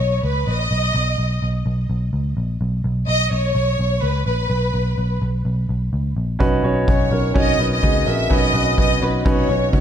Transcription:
Already playing: violin section C#5
0.00 picked electric bass B1
0.23 picked electric bass C#2, violin section B4
0.47 picked electric bass A#1, violin section D#5
0.71 picked electric bass B1
0.95 picked electric bass B1
1.18 picked electric bass B1
1.42 picked electric bass B1
1.66 picked electric bass B1
1.90 picked electric bass B1
2.13 picked electric bass C#2
2.37 picked electric bass A#1
2.61 picked electric bass B1
2.84 picked electric bass B1
3.08 picked electric bass B1, violin section D#5
3.31 picked electric bass B1, violin section C#5
3.55 picked electric bass B1
3.79 picked electric bass B1
4.02 picked electric bass C#2, violin section B4
4.26 picked electric bass A#1, violin section B4
4.50 picked electric bass B1
4.74 picked electric bass B1
4.98 picked electric bass B1
5.22 picked electric bass B1
5.45 picked electric bass B1
5.69 picked electric bass B1
5.93 picked electric bass C#2
6.16 picked electric bass A#1
6.39 picked electric bass B1, grand piano C#4 D#4 F#4 B4, kick
6.63 picked electric bass B1, grand piano C#4 D#4 F#4 C#5
6.87 picked electric bass B1, grand piano C#4 D#4 F#4 B4, violin section C#5, kick
7.11 picked electric bass B1, grand piano C#4 D#4 F#4 A#4
7.34 picked electric bass B1, grand piano C#4 D#4 F#4 C#5, violin section D#5, kick
7.58 picked electric bass B1, grand piano C#4 D#4 F#4 B4
7.72 violin section D#5
7.82 picked electric bass C#2, grand piano C#4 D#4 F#4 G#4, kick
8.06 picked electric bass A#1, grand piano C#4 D#4 F#4 A#4, violin section E5
8.30 picked electric bass B1, grand piano C#4 D#4 F#4 B4, violin section D#5, kick
8.53 picked electric bass B1, grand piano C#4 D#4 F#4 B4
8.77 picked electric bass B1, grand piano C#4 D#4 F#4 B4, violin section D#5, kick
9.01 picked electric bass B1, grand piano C#4 D#4 F#4 B4, violin section B4
9.25 picked electric bass B1, grand piano C#4 D#4 F#4 B4, violin section C#5, kick
9.48 picked electric bass B1, grand piano C#4 D#4 F#4
9.72 picked electric bass C#2, grand piano C#4 D#4 F#4 C#5, kick

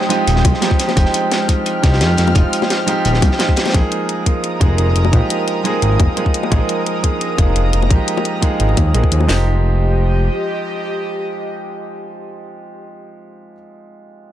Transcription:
Already playing: grand piano F3 G#3 C4 D#4 F4 G4, analog synth pad G#3 G5 D#6, downlifter
0.01 snare
0.09 grand piano F3 G#3 C4 D#4 G4, closed hi-hat
0.27 analog synth bass D#1, closed hi-hat
0.36 snare
0.45 analog synth bass C2, kick, closed hi-hat, high bongo
0.54 snare
0.61 grand piano F3 G#3 C4 D#4 G4, snare, closed hi-hat
0.71 kick
0.79 snare, closed hi-hat
0.88 snare, high bongo
0.95 analog synth bass F1, grand piano F3 G#3 C4 D#4 G4, analog synth pad F6, kick, closed hi-hat
1.05 snare
1.14 closed hi-hat
1.32 snare, closed hi-hat
1.48 grand piano F3 G#3 C4 D#4 G4, kick, closed hi-hat
1.66 closed hi-hat
1.82 analog synth bass C2, grand piano F3 G#3 C4 D#4 G4, kick, snare, closed hi-hat
1.93 snare
2.01 analog synth bass F2, snare, closed hi-hat
2.17 analog synth bass F2, snare, closed hi-hat
2.27 high bongo
2.34 analog synth bass F1, grand piano F3 G#3 C4 D#4 F4, kick, closed hi-hat
2.53 closed hi-hat
2.62 snare, high bongo
2.70 snare, closed hi-hat
2.86 grand piano F3 G#3 C4 D#4 G4, closed hi-hat
3.05 analog synth bass D#1, closed hi-hat
3.14 snare
3.22 analog synth bass C2, kick, closed hi-hat, high bongo
3.31 snare
3.39 grand piano F3 G#3 C4 D#4 G4, snare, closed hi-hat
3.49 kick
3.56 snare, closed hi-hat
3.66 snare, closed hi-hat, high bongo
3.70 grand piano F3 G#3, analog synth pad A#4, snare, closed hi-hat
3.74 analog synth bass A#1, grand piano A#3 D#4 G#4, analog synth pad A#5 D#6, kick, closed hi-hat
3.92 closed hi-hat
4.09 closed hi-hat
4.26 grand piano F3 G#3 A#3 D#4 G#4, kick, closed hi-hat
4.44 closed hi-hat
4.59 analog synth bass F1, grand piano F3 G#3 A#3 D#4 G#4, kick, closed hi-hat
4.78 analog synth bass F1, closed hi-hat
4.96 analog synth bass F1, closed hi-hat
5.05 high bongo
5.12 analog synth bass A#1, grand piano F3 G#3 A#3 D#4 G4, kick, closed hi-hat
5.30 closed hi-hat
5.48 closed hi-hat
5.64 grand piano F3 G#3 A#3 D#4 G#4, closed hi-hat
5.82 analog synth bass G#1, closed hi-hat
6.00 analog synth bass F1, kick, closed hi-hat, high bongo
6.16 grand piano F3 G#3 A#3 D#4 G#4, closed hi-hat
6.26 kick
6.34 closed hi-hat
6.43 high bongo
6.50 analog synth bass A#1, grand piano F3 G#3 A#3 D#4 G#4, analog synth pad A#5, kick, closed hi-hat
6.69 closed hi-hat
6.86 closed hi-hat
7.03 grand piano F3 G#3 A#3 D#4 G#4, kick, closed hi-hat
7.21 closed hi-hat
7.37 analog synth bass F1, grand piano F3 G#3 A#3 D#4 G#4, kick, closed hi-hat
7.56 analog synth bass F1, closed hi-hat
7.73 analog synth bass F1, closed hi-hat
7.82 high bongo
7.89 analog synth bass A#1, grand piano F3 G#3 A#3 D#4 G4, kick, closed hi-hat
8.08 closed hi-hat
8.17 high bongo
8.25 closed hi-hat
8.41 grand piano F3 G#3 A#3 D#4 G#4, kick, closed hi-hat
8.60 analog synth bass G#1, closed hi-hat
8.69 high bongo
8.77 analog synth bass D#2, kick, closed hi-hat, high bongo
8.94 analog synth bass A#1, grand piano F3 G#3 A#3 D#4 G#4, closed hi-hat
9.04 kick
9.12 analog synth bass D#2, closed hi-hat
9.20 high bongo
9.27 analog synth bass F1, grand piano F3 G#3 C4 D#4, analog synth pad G4 D#5, snare, open hi-hat
9.31 grand piano G4

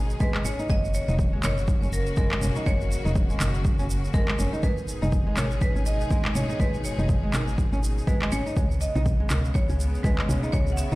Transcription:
Already playing: fm bass G#1, string section B2 D#3 G#3 D#4 G#4
0.10 shaker
0.20 fm bass G#1, nylon-string guitar G#3, marimba B4, kick, shaker
0.35 nylon-string guitar G#3, clap
0.45 fm bass G#1, nylon-string guitar C#4, marimba C#5, shaker
0.59 nylon-string guitar D#4, shaker
0.69 fm bass F#1, string section C#3 F#3 A#3 F#4, nylon-string guitar G#3, marimba D#5, kick, shaker
0.85 shaker
0.94 marimba C#5, shaker
1.08 fm bass E1, nylon-string guitar D#4, mid tom, shaker
1.19 kick, shaker
1.33 nylon-string guitar G#3
1.43 fm bass F#1, nylon-string guitar D#3, marimba C#5, clap, mid tom, shaker
1.58 shaker
1.68 kick, shaker
1.82 fm bass F#1, nylon-string guitar C#4, shaker
1.93 marimba A#4, shaker
2.06 shaker
2.17 fm bass F#1, nylon-string guitar G#3, marimba A#4, kick, shaker
2.31 nylon-string guitar G#3, clap
2.42 fm bass F#1, nylon-string guitar C#4, mid tom, shaker
2.56 nylon-string guitar D#4, shaker
2.66 fm bass F#1, nylon-string guitar G#3, marimba C#5, kick, shaker
2.81 shaker
2.92 shaker
3.05 fm bass E1, nylon-string guitar D#4, mid tom, shaker
3.15 kick, shaker
3.30 nylon-string guitar G#3, shaker
3.40 fm bass F#1, nylon-string guitar D#3, clap, mid tom, shaker
3.54 shaker
3.65 kick, shaker
3.79 fm bass F#1, nylon-string guitar C#4, shaker
3.90 shaker
4.04 shaker
4.14 fm bass F#1, nylon-string guitar G#3, marimba A#4, kick, shaker
4.28 nylon-string guitar G#3, clap
4.39 fm bass F#1, nylon-string guitar C#4, shaker
4.53 nylon-string guitar D#4, shaker
4.63 fm bass G#1, string section B2 D#3 G#3 D#4 G#4, nylon-string guitar G#3, marimba B4, kick, shaker
4.77 shaker
4.88 shaker
5.02 fm bass F#1, nylon-string guitar D#4, mid tom, shaker
5.12 kick, shaker
5.27 nylon-string guitar G#3
5.37 fm bass G#1, nylon-string guitar D#3, marimba C#5, clap, mid tom, shaker
5.51 shaker
5.61 marimba B4, kick, shaker
5.76 fm bass G#1, nylon-string guitar C#4, shaker
5.86 marimba D#5, shaker
6.01 shaker
6.11 fm bass G#1, nylon-string guitar G#3, kick, shaker
6.25 nylon-string guitar G#3, clap
6.35 fm bass G#1, nylon-string guitar C#4, marimba C#5, mid tom, shaker
6.50 nylon-string guitar D#4, shaker
6.60 fm bass G#1, nylon-string guitar G#3, marimba B4, kick, shaker
6.74 shaker
6.85 marimba C#5, shaker
6.98 fm bass F#1, nylon-string guitar D#4, mid tom, shaker
7.09 kick, shaker
7.23 nylon-string guitar G#3
7.33 fm bass G#1, nylon-string guitar D#3, clap, mid tom, shaker
7.48 shaker
7.58 kick, shaker
7.72 fm bass G#1, nylon-string guitar C#4, shaker
7.84 shaker
7.98 shaker
8.07 fm bass G#1, nylon-string guitar G#3, marimba B4, kick, shaker
8.22 nylon-string guitar G#3, clap
8.32 fm bass G#1, nylon-string guitar C#4, marimba C#5, shaker
8.46 nylon-string guitar D#4, shaker
8.56 fm bass C#2, string section C#3 G#3 B3, nylon-string guitar G#3, kick, shaker
8.71 shaker
8.81 marimba D#5, shaker
8.95 fm bass B1, nylon-string guitar D#4, mid tom, shaker
9.06 kick, shaker
9.20 nylon-string guitar G#3
9.30 fm bass C#2, nylon-string guitar D#3, clap, mid tom, shaker
9.45 shaker
9.54 marimba C#5, kick, shaker
9.69 fm bass C#2, nylon-string guitar C#4, shaker
9.80 shaker
9.95 shaker
10.03 fm bass C#2, nylon-string guitar G#3, marimba B4, kick, shaker
10.18 nylon-string guitar G#3, clap
10.29 fm bass C#2, nylon-string guitar C#4, mid tom, shaker
10.43 nylon-string guitar D#4, shaker
10.52 fm bass C#2, nylon-string guitar G#3, string section F#4, marimba C#5, kick, shaker
10.67 shaker
10.72 marimba F#5
10.77 marimba E5, shaker
10.92 fm bass B1, shaker

